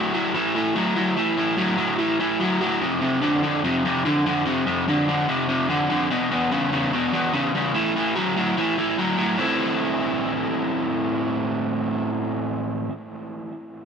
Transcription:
0.00 0.12 A2 medium
0.00 0.12 F#3 medium
0.13 0.33 A2 medium
0.13 0.33 F#3 medium
0.34 0.53 A2 medium
0.34 0.53 E3 medium
0.55 0.74 A2 medium
0.55 0.74 E3 medium
0.75 0.94 A2 medium
0.75 0.94 F#3 medium
0.96 1.15 A2 medium
0.96 1.15 F#3 medium
1.16 1.35 A2 medium
1.16 1.35 E3 medium
1.37 1.56 A2 medium
1.37 1.56 E3 medium
1.57 1.76 A2 medium
1.57 1.76 F#3 medium
1.77 1.97 A2 medium
1.77 1.97 F#3 medium
1.98 2.17 A2 medium
1.98 2.18 E3 medium
2.20 2.38 A2 medium
2.20 2.38 E3 medium
2.40 2.59 A2 medium
2.40 2.59 F#3 medium
2.61 2.79 A2 medium
2.61 2.79 F#3 medium
2.81 3.00 F2 medium
2.81 3.00 C3 medium
3.01 3.20 F2 medium
3.01 3.20 C3 medium
3.22 3.41 F2 medium
3.22 3.41 D3 loud
3.43 3.61 F2 medium
3.43 3.62 D3 medium
3.64 3.82 F2 medium
3.64 3.82 C3 medium
3.85 4.03 F2 medium
3.85 4.03 C3 medium
4.05 4.23 F2 medium
4.05 4.24 D3 medium
4.26 4.44 F2 medium
4.26 4.44 D3 medium
4.46 4.64 F2 medium
4.46 4.64 C3 medium
4.66 4.85 F2 medium
4.66 4.85 C3 medium
4.88 5.06 F2 medium
4.88 5.06 D3 loud
5.08 5.26 F2 medium
5.08 5.27 D3 medium
5.28 5.47 F2 medium
5.28 5.47 C3 medium
5.48 5.67 F2 medium
5.48 5.67 C3 medium
5.69 5.88 F2 medium
5.69 5.88 D3 medium
5.89 6.08 F2 medium
5.89 6.08 D3 medium
6.10 6.29 E2 medium
6.10 6.29 B2 loud
6.31 6.49 E2 medium
6.31 6.50 B2 medium
6.51 6.70 E2 medium
6.51 6.70 C#3 medium
6.72 6.90 E2 medium
6.72 6.91 C#3 medium
6.93 7.11 E2 medium
6.93 7.11 B2 medium
7.13 7.32 E2 medium
7.13 7.32 B2 medium
7.33 7.52 E2 medium
7.33 7.52 C#3 medium
7.55 7.73 E2 medium
7.55 7.73 C#3 medium
7.74 7.93 A2 medium
7.74 7.93 E3 medium
7.96 8.14 A2 medium
7.96 8.14 E3 medium
8.15 8.34 A2 medium
8.15 8.34 F#3 loud
8.36 8.55 A2 medium
8.36 8.55 F#3 medium
8.57 8.75 A2 medium
8.57 8.76 E3 medium
8.77 8.96 A2 medium
8.77 8.96 E3 medium
8.98 9.17 A2 medium
8.98 9.17 F#3 medium
9.18 9.37 A2 medium
9.18 9.37 F#3 medium
9.38 12.88 A2 medium
9.38 12.89 E3 medium
9.38 12.90 A3 loud
9.38 12.91 C4 medium
9.42 12.92 E4 loud

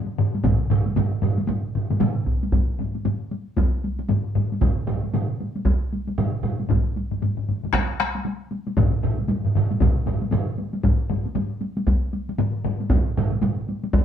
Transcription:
0.18 taiko low-mid loud
0.35 taiko high medium
0.44 taiko medium
0.44 taiko low-mid medium
0.44 taiko mid medium
0.44 taiko high medium
0.70 taiko low-mid medium
0.70 taiko mid loud
0.86 taiko high medium
0.96 taiko low-mid medium
0.96 taiko mid medium
0.96 taiko high medium
1.22 taiko low-mid medium
1.22 taiko mid medium
1.22 taiko high soft
1.38 taiko high medium
1.47 taiko low-mid medium
1.47 taiko mid medium
1.47 taiko high medium
1.75 taiko low-mid medium
1.75 taiko mid medium
1.90 taiko low-mid medium
1.90 taiko mid medium
1.90 taiko high medium
2.00 taiko low-mid loud
2.00 taiko mid loud
2.00 taiko high medium
2.27 taiko medium
2.43 taiko high medium
2.52 taiko medium
2.52 taiko low-mid medium
2.52 taiko high medium
2.79 taiko low-mid medium
2.79 taiko high soft
2.95 taiko high soft
3.05 taiko low-mid medium
3.05 taiko high medium
3.31 taiko high soft
3.57 taiko medium
3.57 taiko high medium
3.84 taiko high soft
3.99 taiko high soft
4.09 taiko low-mid medium
4.09 taiko high medium
4.35 taiko low-mid medium
4.35 taiko high soft
4.52 taiko high soft
4.62 taiko medium
4.62 taiko mid medium
4.62 taiko high medium
4.87 taiko mid medium
4.87 taiko high soft
5.04 taiko high soft
5.14 taiko mid medium
5.14 taiko high medium
5.40 taiko high soft
5.55 taiko high soft
5.65 taiko medium
5.65 taiko high medium
5.93 taiko high soft
6.07 taiko high soft
6.18 taiko mid medium
6.18 taiko high medium
6.43 taiko mid medium
6.43 taiko high soft
6.60 taiko high soft
6.69 taiko medium
6.69 taiko low-mid medium
6.69 taiko high medium
6.96 taiko high soft
7.11 taiko low-mid medium
7.11 taiko high soft
7.22 taiko low-mid medium
7.22 taiko high medium
7.37 taiko low-mid medium
7.49 taiko low-mid medium
7.49 taiko high soft
7.63 taiko low-mid medium
7.63 taiko high soft
7.73 taiko rim medium
7.73 taiko medium
7.73 taiko high medium
8.00 taiko rim medium
8.00 taiko high soft
8.15 taiko high soft
8.25 taiko high medium
8.51 taiko high soft
8.67 taiko high soft
8.77 taiko loud
8.77 taiko low-mid medium
8.77 taiko mid medium
8.77 taiko high medium
9.03 taiko low-mid medium
9.03 taiko mid medium
9.18 taiko high soft
9.28 taiko low-mid medium
9.28 taiko mid medium
9.28 taiko high medium
9.45 taiko low-mid medium
9.45 taiko mid medium
9.55 taiko low-mid medium
9.55 taiko mid medium
9.71 taiko high medium
9.80 taiko medium
9.80 taiko low-mid medium
9.80 taiko mid medium
9.80 taiko high medium
10.06 taiko low-mid medium
10.06 taiko mid medium
10.06 taiko high medium
10.22 taiko high soft
10.31 taiko low-mid medium
10.31 taiko mid loud
10.31 taiko high medium
10.58 taiko high soft
10.73 taiko high soft
10.83 taiko medium
10.83 taiko low-mid medium
10.83 taiko high medium
11.10 taiko low-mid medium
11.10 taiko high medium
11.25 taiko high soft
11.35 taiko low-mid medium
11.35 taiko high medium
11.61 taiko high soft
11.77 taiko high medium
11.87 taiko medium
11.87 taiko high medium
12.13 taiko high medium
12.29 taiko high soft
12.38 taiko low-mid medium
12.38 taiko high medium
12.65 taiko low-mid loud
12.65 taiko high soft
12.80 taiko high medium
12.90 taiko medium
12.90 taiko mid medium
12.90 taiko high medium
13.17 taiko mid loud
13.17 taiko high medium
13.32 taiko high soft
13.42 taiko mid medium
13.42 taiko high medium
13.69 taiko high soft
13.84 taiko high medium
13.93 taiko loud
13.93 taiko high medium

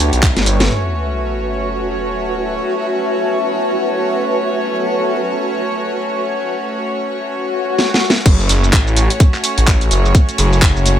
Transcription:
0.00 0.11 D2 medium
0.00 0.66 B3 medium
0.00 0.66 D4 medium
0.00 0.66 G4 medium
0.00 0.70 B4 medium
0.00 0.66 C#5 medium
0.00 0.70 E5 medium
0.00 0.70 A5 medium
0.00 shaker medium
0.13 0.34 B1 medium
0.13 closed hi-hat medium
0.13 shaker soft
0.23 kick loud
0.23 clap loud
0.23 closed hi-hat medium
0.23 shaker soft
0.36 0.68 G1 loud
0.36 snare medium
0.36 closed hi-hat soft
0.36 shaker soft
0.46 open hi-hat medium
0.46 shaker medium
0.60 snare loud
0.60 closed hi-hat soft
0.60 shaker soft
0.70 8.22 A3 medium
0.70 8.22 C#4 medium
0.70 8.22 F#4 medium
0.70 7.31 F#4 medium
0.70 8.22 C#5 medium
0.70 sub drop medium
0.97 7.31 A5 medium
1.03 7.31 B4 medium
1.11 7.31 E5 medium
7.31 swell medium
7.79 snare medium
7.94 snare medium
8.10 snare medium
8.26 8.48 F#1 medium
8.26 10.99 A3 medium
8.26 10.99 C#4 medium
8.26 10.99 F#4 medium
8.26 10.99 C#5 medium
8.26 kick loud
8.26 closed hi-hat medium
8.26 crash loud
8.26 shaker soft
8.40 shaker soft
8.49 8.71 F#1 loud
8.49 open hi-hat loud
8.49 shaker medium
8.64 shaker soft
8.73 9.08 A1 loud
8.73 kick loud
8.73 clap loud
8.73 closed hi-hat medium
8.73 shaker soft
8.87 shaker soft
8.96 open hi-hat medium
8.96 shaker medium
9.10 closed hi-hat medium
9.10 shaker soft
9.20 kick loud
9.20 closed hi-hat medium
9.20 shaker soft
9.34 clap soft
9.34 shaker soft
9.44 open hi-hat loud
9.44 shaker medium
9.58 9.89 A1 loud
9.58 closed hi-hat medium
9.58 shaker soft
9.67 kick loud
9.67 clap loud
9.67 closed hi-hat medium
9.67 shaker soft
9.81 closed hi-hat soft
9.81 shaker soft
9.91 10.13 F#1 loud
9.91 open hi-hat medium
9.91 shaker medium
10.06 shaker soft
10.15 kick loud
10.15 closed hi-hat medium
10.15 shaker soft
10.29 closed hi-hat soft
10.29 shaker soft
10.38 10.74 F#1 loud
10.38 open hi-hat loud
10.38 shaker medium
10.53 shaker soft
10.62 kick loud
10.62 clap loud
10.62 closed hi-hat medium
10.62 shaker soft
10.76 10.99 F#1 loud
10.76 shaker soft
10.86 open hi-hat medium
10.86 shaker medium

